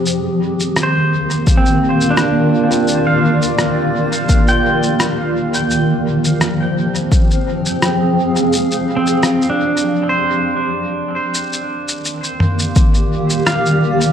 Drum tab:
SH |x--xx--xxx-xx--x|x--xx--xxx-xx--x|x--xx--xxx-xx--x|xx-xxx-x--------|
SD |----r-------r---|----r-------r---|----r-------r---|----r-----------|
T2 |----------------|----------------|----------------|----------------|
BD |--------o-------|--------o-------|--------o-------|----------------|

SH |xx-xxx-xxx-xxx-x|
SD |------------r---|
T2 |------o---------|
BD |--------o-------|